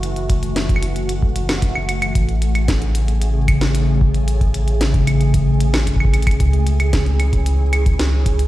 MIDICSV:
0, 0, Header, 1, 4, 480
1, 0, Start_track
1, 0, Tempo, 530973
1, 27, Time_signature, 4, 2, 24, 8
1, 7661, End_track
2, 0, Start_track
2, 0, Title_t, "Ambient pad"
2, 0, Program_c, 0, 92
2, 0, Note_on_c, 0, 52, 78
2, 0, Note_on_c, 0, 57, 73
2, 0, Note_on_c, 0, 66, 87
2, 1910, Note_off_c, 0, 52, 0
2, 1911, Note_off_c, 0, 66, 0
2, 1946, Note_on_c, 0, 49, 78
2, 1947, Note_on_c, 0, 68, 88
2, 5750, Note_off_c, 0, 57, 0
2, 5751, Note_off_c, 0, 49, 0
2, 5787, Note_on_c, 0, 52, 81
2, 5788, Note_on_c, 0, 61, 73
2, 7661, Note_off_c, 0, 52, 0
2, 7661, Note_off_c, 0, 61, 0
2, 7661, Note_off_c, 0, 68, 0
2, 7661, End_track
3, 0, Start_track
3, 0, Title_t, "Sub bass"
3, 0, Program_c, 1, 38
3, 0, Note_on_c, 1, 30, 86
3, 1923, Note_off_c, 1, 30, 0
3, 1946, Note_on_c, 1, 33, 86
3, 5763, Note_off_c, 1, 33, 0
3, 5787, Note_on_c, 1, 37, 89
3, 7661, Note_off_c, 1, 37, 0
3, 7661, End_track
4, 0, Start_track
4, 0, Title_t, "Drums"
4, 29, Note_on_c, 9, 42, 80
4, 119, Note_off_c, 9, 42, 0
4, 148, Note_on_c, 9, 42, 37
4, 238, Note_off_c, 9, 42, 0
4, 267, Note_on_c, 9, 36, 120
4, 268, Note_on_c, 9, 42, 81
4, 358, Note_off_c, 9, 36, 0
4, 358, Note_off_c, 9, 42, 0
4, 387, Note_on_c, 9, 42, 52
4, 477, Note_off_c, 9, 42, 0
4, 507, Note_on_c, 9, 38, 118
4, 507, Note_on_c, 9, 42, 81
4, 597, Note_off_c, 9, 38, 0
4, 597, Note_off_c, 9, 42, 0
4, 627, Note_on_c, 9, 36, 113
4, 627, Note_on_c, 9, 42, 37
4, 687, Note_on_c, 9, 75, 53
4, 718, Note_off_c, 9, 36, 0
4, 718, Note_off_c, 9, 42, 0
4, 747, Note_on_c, 9, 42, 85
4, 778, Note_off_c, 9, 75, 0
4, 837, Note_off_c, 9, 42, 0
4, 867, Note_on_c, 9, 42, 55
4, 957, Note_off_c, 9, 42, 0
4, 987, Note_on_c, 9, 42, 84
4, 1077, Note_off_c, 9, 42, 0
4, 1107, Note_on_c, 9, 36, 121
4, 1198, Note_off_c, 9, 36, 0
4, 1227, Note_on_c, 9, 42, 84
4, 1317, Note_off_c, 9, 42, 0
4, 1347, Note_on_c, 9, 38, 124
4, 1347, Note_on_c, 9, 42, 56
4, 1347, Note_on_c, 9, 75, 37
4, 1438, Note_off_c, 9, 38, 0
4, 1438, Note_off_c, 9, 42, 0
4, 1438, Note_off_c, 9, 75, 0
4, 1467, Note_on_c, 9, 36, 106
4, 1467, Note_on_c, 9, 42, 80
4, 1557, Note_off_c, 9, 42, 0
4, 1558, Note_off_c, 9, 36, 0
4, 1586, Note_on_c, 9, 75, 61
4, 1677, Note_off_c, 9, 75, 0
4, 1706, Note_on_c, 9, 42, 84
4, 1706, Note_on_c, 9, 75, 52
4, 1797, Note_off_c, 9, 42, 0
4, 1797, Note_off_c, 9, 75, 0
4, 1827, Note_on_c, 9, 42, 56
4, 1827, Note_on_c, 9, 75, 79
4, 1917, Note_off_c, 9, 42, 0
4, 1917, Note_off_c, 9, 75, 0
4, 1947, Note_on_c, 9, 36, 124
4, 1947, Note_on_c, 9, 42, 77
4, 2037, Note_off_c, 9, 36, 0
4, 2037, Note_off_c, 9, 42, 0
4, 2067, Note_on_c, 9, 42, 36
4, 2157, Note_off_c, 9, 42, 0
4, 2187, Note_on_c, 9, 42, 80
4, 2277, Note_off_c, 9, 42, 0
4, 2306, Note_on_c, 9, 42, 54
4, 2306, Note_on_c, 9, 75, 58
4, 2397, Note_off_c, 9, 42, 0
4, 2397, Note_off_c, 9, 75, 0
4, 2426, Note_on_c, 9, 38, 122
4, 2426, Note_on_c, 9, 42, 80
4, 2427, Note_on_c, 9, 36, 113
4, 2516, Note_off_c, 9, 38, 0
4, 2516, Note_off_c, 9, 42, 0
4, 2517, Note_off_c, 9, 36, 0
4, 2546, Note_on_c, 9, 42, 38
4, 2637, Note_off_c, 9, 42, 0
4, 2666, Note_on_c, 9, 42, 83
4, 2757, Note_off_c, 9, 42, 0
4, 2787, Note_on_c, 9, 42, 55
4, 2877, Note_off_c, 9, 42, 0
4, 2907, Note_on_c, 9, 42, 82
4, 2997, Note_off_c, 9, 42, 0
4, 3147, Note_on_c, 9, 36, 108
4, 3147, Note_on_c, 9, 42, 80
4, 3147, Note_on_c, 9, 75, 77
4, 3237, Note_off_c, 9, 36, 0
4, 3237, Note_off_c, 9, 42, 0
4, 3237, Note_off_c, 9, 75, 0
4, 3266, Note_on_c, 9, 38, 121
4, 3266, Note_on_c, 9, 42, 54
4, 3357, Note_off_c, 9, 38, 0
4, 3357, Note_off_c, 9, 42, 0
4, 3387, Note_on_c, 9, 42, 78
4, 3477, Note_off_c, 9, 42, 0
4, 3627, Note_on_c, 9, 36, 125
4, 3718, Note_off_c, 9, 36, 0
4, 3747, Note_on_c, 9, 42, 54
4, 3837, Note_off_c, 9, 42, 0
4, 3867, Note_on_c, 9, 42, 75
4, 3958, Note_off_c, 9, 42, 0
4, 3987, Note_on_c, 9, 36, 107
4, 3988, Note_on_c, 9, 42, 35
4, 4078, Note_off_c, 9, 36, 0
4, 4079, Note_off_c, 9, 42, 0
4, 4107, Note_on_c, 9, 42, 75
4, 4198, Note_off_c, 9, 42, 0
4, 4228, Note_on_c, 9, 42, 51
4, 4318, Note_off_c, 9, 42, 0
4, 4347, Note_on_c, 9, 38, 122
4, 4347, Note_on_c, 9, 42, 76
4, 4437, Note_off_c, 9, 38, 0
4, 4437, Note_off_c, 9, 42, 0
4, 4467, Note_on_c, 9, 36, 125
4, 4467, Note_on_c, 9, 42, 35
4, 4558, Note_off_c, 9, 36, 0
4, 4558, Note_off_c, 9, 42, 0
4, 4587, Note_on_c, 9, 42, 77
4, 4587, Note_on_c, 9, 75, 51
4, 4677, Note_off_c, 9, 42, 0
4, 4677, Note_off_c, 9, 75, 0
4, 4707, Note_on_c, 9, 42, 52
4, 4797, Note_off_c, 9, 42, 0
4, 4827, Note_on_c, 9, 36, 109
4, 4828, Note_on_c, 9, 42, 79
4, 4918, Note_off_c, 9, 36, 0
4, 4918, Note_off_c, 9, 42, 0
4, 5067, Note_on_c, 9, 42, 78
4, 5157, Note_off_c, 9, 42, 0
4, 5187, Note_on_c, 9, 38, 124
4, 5187, Note_on_c, 9, 42, 52
4, 5187, Note_on_c, 9, 75, 35
4, 5277, Note_off_c, 9, 38, 0
4, 5277, Note_off_c, 9, 42, 0
4, 5277, Note_off_c, 9, 75, 0
4, 5307, Note_on_c, 9, 36, 55
4, 5307, Note_on_c, 9, 42, 75
4, 5387, Note_off_c, 9, 36, 0
4, 5387, Note_on_c, 9, 36, 75
4, 5398, Note_off_c, 9, 42, 0
4, 5427, Note_on_c, 9, 75, 57
4, 5467, Note_off_c, 9, 36, 0
4, 5467, Note_on_c, 9, 36, 96
4, 5518, Note_off_c, 9, 75, 0
4, 5547, Note_on_c, 9, 42, 73
4, 5547, Note_on_c, 9, 75, 49
4, 5557, Note_off_c, 9, 36, 0
4, 5627, Note_off_c, 9, 42, 0
4, 5627, Note_on_c, 9, 42, 61
4, 5637, Note_off_c, 9, 75, 0
4, 5667, Note_off_c, 9, 42, 0
4, 5667, Note_on_c, 9, 36, 110
4, 5667, Note_on_c, 9, 42, 52
4, 5667, Note_on_c, 9, 75, 75
4, 5707, Note_off_c, 9, 42, 0
4, 5707, Note_on_c, 9, 42, 50
4, 5757, Note_off_c, 9, 36, 0
4, 5757, Note_off_c, 9, 75, 0
4, 5786, Note_off_c, 9, 42, 0
4, 5786, Note_on_c, 9, 42, 72
4, 5787, Note_on_c, 9, 36, 104
4, 5877, Note_off_c, 9, 36, 0
4, 5877, Note_off_c, 9, 42, 0
4, 5907, Note_on_c, 9, 42, 35
4, 5997, Note_off_c, 9, 42, 0
4, 6026, Note_on_c, 9, 42, 75
4, 6116, Note_off_c, 9, 42, 0
4, 6146, Note_on_c, 9, 42, 49
4, 6146, Note_on_c, 9, 75, 59
4, 6237, Note_off_c, 9, 42, 0
4, 6237, Note_off_c, 9, 75, 0
4, 6266, Note_on_c, 9, 38, 115
4, 6266, Note_on_c, 9, 42, 76
4, 6267, Note_on_c, 9, 36, 122
4, 6356, Note_off_c, 9, 38, 0
4, 6356, Note_off_c, 9, 42, 0
4, 6357, Note_off_c, 9, 36, 0
4, 6386, Note_on_c, 9, 42, 35
4, 6476, Note_off_c, 9, 42, 0
4, 6505, Note_on_c, 9, 42, 77
4, 6505, Note_on_c, 9, 75, 50
4, 6596, Note_off_c, 9, 42, 0
4, 6596, Note_off_c, 9, 75, 0
4, 6626, Note_on_c, 9, 36, 104
4, 6626, Note_on_c, 9, 42, 49
4, 6716, Note_off_c, 9, 42, 0
4, 6717, Note_off_c, 9, 36, 0
4, 6746, Note_on_c, 9, 42, 77
4, 6836, Note_off_c, 9, 42, 0
4, 6986, Note_on_c, 9, 42, 77
4, 6986, Note_on_c, 9, 75, 74
4, 7077, Note_off_c, 9, 42, 0
4, 7077, Note_off_c, 9, 75, 0
4, 7107, Note_on_c, 9, 36, 120
4, 7107, Note_on_c, 9, 42, 50
4, 7197, Note_off_c, 9, 36, 0
4, 7197, Note_off_c, 9, 42, 0
4, 7227, Note_on_c, 9, 38, 119
4, 7227, Note_on_c, 9, 42, 73
4, 7317, Note_off_c, 9, 38, 0
4, 7317, Note_off_c, 9, 42, 0
4, 7467, Note_on_c, 9, 36, 105
4, 7467, Note_on_c, 9, 42, 75
4, 7557, Note_off_c, 9, 36, 0
4, 7558, Note_off_c, 9, 42, 0
4, 7587, Note_on_c, 9, 42, 52
4, 7661, Note_off_c, 9, 42, 0
4, 7661, End_track
0, 0, End_of_file